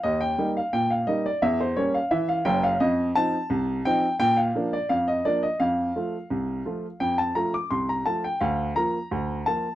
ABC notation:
X:1
M:2/4
L:1/16
Q:1/4=86
K:Bb
V:1 name="Upright piano"
e g2 f g f e d | =e c ^c f e f g f | e2 a4 g2 | g f2 d f e d e |
f8 | g a b d' c' b a g | f2 b4 a2 |]
V:2 name="Upright piano" clef=bass
E,,2 [G,B,E]2 B,,2 [G,B,E]2 | =E,,2 [G,B,^C]2 =E,2 [_G,,,_G,,]2 | F,,2 [F,CE]2 C,,2 [F,CE]2 | B,,2 [F,B,D]2 F,,2 [F,B,D]2 |
F,,2 [F,A,F]2 C,,2 [F,A,F]2 | F,,2 [F,A,F]2 C,,2 [F,A,F]2 | D,,2 [F,B,F]2 D,,2 [F,B,F]2 |]